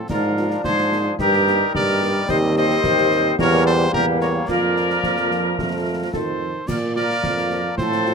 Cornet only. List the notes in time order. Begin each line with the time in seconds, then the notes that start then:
0.10 A#4
0.64 C5
1.21 A#4
1.75 D5
2.30 D#5
2.58 D#5
3.41 C#5
3.66 C5
3.94 A#4
4.21 C#5
4.49 D5
6.14 C5
6.67 D5
6.96 D5
7.77 C5